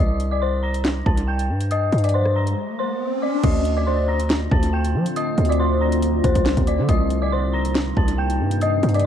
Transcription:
0.00 1.02 C2 loud
0.00 0.30 D#5 medium
0.00 0.29 D#6 loud
0.20 closed hi-hat medium
0.31 0.39 D5 medium
0.31 0.39 D6 medium
0.42 0.58 C5 medium
0.42 0.58 C6 medium
0.63 0.79 A#5 medium
0.63 0.80 A#6 medium
0.74 closed hi-hat medium
0.85 snare loud
0.85 clap medium
1.06 1.51 C2 loud
1.06 1.22 A5 medium
1.06 1.23 A6 medium
1.06 kick medium
1.17 closed hi-hat medium
1.27 1.68 G5 medium
1.27 1.68 G6 medium
1.39 closed hi-hat medium
1.49 1.90 G2 loud
1.61 closed hi-hat medium
1.71 2.02 D#5 medium
1.71 2.02 D#6 loud
1.71 closed hi-hat medium
1.71 riser medium
1.92 2.55 G2 loud
1.92 closed hi-hat soft
1.98 closed hi-hat medium
2.04 2.12 D5 medium
2.04 2.11 D6 medium
2.04 closed hi-hat medium
2.09 closed hi-hat medium
2.14 2.31 C5 medium
2.14 2.30 C6 loud
2.25 cross-stick medium
2.36 2.52 A#5 medium
2.36 2.52 A#6 medium
2.47 closed hi-hat medium
2.79 3.20 C5 medium
2.79 3.19 C6 medium
3.22 3.39 D5 medium
3.22 3.38 D6 medium
3.43 4.47 D2 loud
3.43 6.85 D3 medium
3.43 6.85 A3 medium
3.43 6.85 C4 medium
3.43 6.85 F4 loud
3.43 3.75 D#5 medium
3.43 3.75 D#6 loud
3.43 kick loud
3.43 closed hi-hat medium
3.43 crash loud
3.65 closed hi-hat medium
3.77 3.85 D5 medium
3.77 3.84 D6 medium
3.87 4.03 C5 medium
3.87 4.03 C6 medium
4.08 4.24 A#5 medium
4.08 4.25 A#6 medium
4.20 closed hi-hat medium
4.30 snare loud
4.30 clap medium
4.51 4.96 D2 loud
4.51 4.68 A5 medium
4.51 4.68 A6 medium
4.51 kick loud
4.63 closed hi-hat medium
4.73 5.14 G5 medium
4.73 5.14 G6 medium
4.85 closed hi-hat medium
4.95 5.05 F3 loud
5.06 closed hi-hat medium
5.16 5.48 D#5 medium
5.16 5.47 D#6 loud
5.16 closed hi-hat medium
5.38 6.21 D2 loud
5.38 closed hi-hat soft
5.45 closed hi-hat medium
5.49 5.57 D5 medium
5.49 5.57 D6 medium
5.49 closed hi-hat medium
5.60 5.76 C5 medium
5.60 5.76 C6 loud
5.81 5.97 A#5 medium
5.81 5.98 A#6 medium
5.92 closed hi-hat medium
6.02 closed hi-hat medium
6.24 6.35 D2 loud
6.24 6.65 C5 medium
6.24 6.65 C6 medium
6.24 kick loud
6.24 closed hi-hat medium
6.35 6.56 C2 loud
6.35 kick loud
6.35 closed hi-hat medium
6.46 snare loud
6.46 clap loud
6.57 6.80 D2 loud
6.57 kick loud
6.57 closed hi-hat medium
6.67 6.84 D5 medium
6.67 6.83 D6 medium
6.67 closed hi-hat medium
6.79 6.88 D3 loud
6.89 7.93 C2 loud
6.89 9.06 C3 medium
6.89 9.06 G3 medium
6.89 9.06 A#3 medium
6.89 9.06 D#4 loud
6.89 7.20 D#5 medium
6.89 7.20 D#6 loud
6.89 kick loud
6.89 closed hi-hat medium
7.10 closed hi-hat medium
7.22 7.30 D5 medium
7.22 7.29 D6 medium
7.32 7.49 C5 medium
7.32 7.48 C6 medium
7.53 7.70 A#5 medium
7.53 7.70 A#6 medium
7.65 closed hi-hat medium
7.75 snare loud
7.75 clap medium
7.97 8.41 C2 loud
7.97 8.13 A5 medium
7.97 8.13 A6 medium
7.97 kick loud
8.08 closed hi-hat medium
8.18 8.59 G5 medium
8.18 8.59 G6 medium
8.30 closed hi-hat medium
8.40 8.81 G2 loud
8.51 closed hi-hat medium
8.61 8.93 D#5 medium
8.61 8.93 D#6 loud
8.61 closed hi-hat medium
8.83 9.06 G2 loud
8.83 closed hi-hat soft
8.89 closed hi-hat medium
8.94 9.03 D5 medium
8.94 9.02 D6 medium
8.94 closed hi-hat medium
9.00 closed hi-hat medium

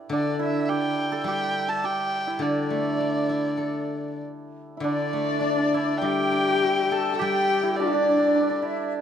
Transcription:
0.00 0.12 D4 soft
0.00 0.39 E4 medium
0.00 0.69 G4 medium
0.09 1.83 D3 medium
0.09 2.42 D4 medium
0.09 0.39 D5 medium
0.39 2.27 E4 medium
0.39 0.71 E5 medium
0.69 1.27 G4 medium
0.69 1.26 G5 medium
1.12 1.68 A4 medium
1.24 2.99 G3 medium
1.24 1.84 G4 medium
1.24 1.70 G5 medium
1.68 4.61 A4 medium
1.68 1.87 A5 medium
1.84 4.98 G4 medium
1.84 2.44 G5 medium
2.27 4.77 E4 medium
2.39 4.20 D3 medium
2.39 4.84 D4 medium
2.39 4.22 D5 medium
2.70 3.90 A3 soft
3.00 4.22 D4 soft
3.29 4.53 E4 soft
3.57 4.82 A4 soft
4.76 5.74 E4 soft
4.76 4.84 E5 soft
4.80 6.61 D3 medium
4.80 6.05 D4 medium
4.80 7.79 D4 medium
4.80 6.06 D5 medium
4.80 5.99 D5 medium
5.13 6.32 A3 soft
5.41 6.30 D4 soft
5.74 6.92 E4 soft
5.74 7.63 E4 medium
5.98 7.20 G3 medium
5.98 7.17 G5 medium
6.02 7.19 G4 medium
6.02 7.21 G4 medium
6.02 6.93 G5 medium
6.32 7.49 D4 soft
6.63 7.79 G4 soft
6.91 7.13 A4 medium
6.91 8.07 A4 soft
6.91 7.24 A5 medium
7.14 9.01 A4 medium
7.14 7.78 G5 medium
7.19 8.93 G3 medium
7.19 9.01 G4 medium
7.19 7.80 G4 medium
7.19 7.77 G5 medium
7.63 8.62 E4 medium
7.76 8.93 D4 medium
7.76 7.87 D4 medium
7.76 8.92 D5 medium
7.76 8.67 D5 medium
7.87 7.94 D4 soft
7.94 8.02 D4 medium
8.03 8.08 D4 soft
8.09 8.14 D4 soft
8.14 8.19 D4 soft
8.19 8.27 D4 soft
8.28 8.34 D4 soft
8.35 8.43 D4 medium
8.43 8.50 D4 soft
8.50 9.01 D4 medium
8.62 9.01 E4 medium
8.62 8.93 E5 medium

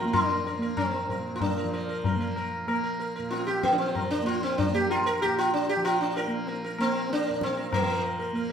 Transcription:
0.00 1.10 A#2 medium
0.00 1.63 F3 medium
0.00 0.05 A#3 medium
0.00 0.13 F4 loud
0.00 0.27 A#4 soft
0.05 0.58 A#3 medium
0.13 0.76 D4 loud
0.13 tabla na medium
0.13 tabla ge medium
0.30 0.45 A#4 soft
0.45 0.61 A#4 soft
0.45 tabla te medium
0.58 2.16 A#3 medium
0.58 0.91 A#4 soft
0.77 1.35 C4 medium
0.77 tabla na medium
0.77 tabla ge medium
0.94 1.09 A#4 soft
1.09 3.19 A#2 medium
1.09 1.39 A#4 soft
1.09 tabla ge medium
1.36 1.41 F4 medium
1.40 2.33 D4 medium
1.40 tabla tin medium
1.40 tabla ge loud
1.57 1.72 A#4 soft
1.63 3.70 F3 medium
1.73 1.88 A#4 soft
1.89 2.04 A#4 soft
2.04 2.19 A#4 soft
2.04 tabla tin medium
2.04 tabla ge medium
2.16 2.67 A#3 medium
2.21 2.36 A#4 soft
2.36 2.67 A#4 soft
2.36 tabla na medium
2.67 4.22 A#3 medium
2.67 2.82 A#4 soft
2.67 tabla na medium
2.84 2.98 A#4 soft
3.00 3.15 A#4 soft
3.16 5.25 A#2 medium
3.16 3.46 A#4 soft
3.31 3.48 F4 medium
3.31 tabla te medium
3.47 3.64 G4 medium
3.47 tabla te medium
3.63 3.74 A#3 medium
3.63 tabla ke medium
3.70 5.76 F3 medium
3.70 3.78 D4 medium
3.78 4.10 C4 medium
3.78 tabla te medium
3.95 4.25 A#4 soft
3.95 tabla tin medium
3.95 tabla ge medium
4.11 4.26 D4 medium
4.22 4.73 A#3 medium
4.22 4.43 F4 medium
4.43 4.58 C4 medium
4.58 4.75 D4 loud
4.58 tabla tin medium
4.58 tabla ge medium
4.73 6.27 A#3 medium
4.73 4.90 G4 loud
4.90 5.06 F4 medium
4.90 tabla na medium
5.06 5.22 A#4 loud
5.22 7.30 A#2 medium
5.22 5.38 G4 loud
5.22 tabla na medium
5.38 5.53 F4 loud
5.54 5.70 D4 medium
5.69 5.86 G4 loud
5.76 7.81 F3 medium
5.85 6.00 F4 loud
5.85 tabla na medium
6.01 6.17 D4 medium
6.16 6.31 A#4 medium
6.16 tabla na medium
6.27 6.79 A#3 medium
6.47 6.63 A#4 soft
6.47 tabla te medium
6.64 6.93 A#4 soft
6.79 8.33 A#3 medium
6.79 7.12 C4 loud
6.79 tabla na medium
6.95 7.24 A#4 soft
7.10 7.43 D4 loud
7.10 tabla te medium
7.27 8.52 A#2 medium
7.27 7.56 A#4 soft
7.41 7.75 C4 loud
7.41 tabla ke medium
7.57 7.86 A#4 soft
7.73 8.03 A#3 medium
7.73 tabla na loud
7.73 tabla ge loud
7.81 8.52 F3 medium
7.87 8.02 A#4 soft
8.04 8.18 A#4 soft
8.19 8.34 A#4 soft
8.33 8.52 A#3 medium
8.33 8.49 A#4 soft

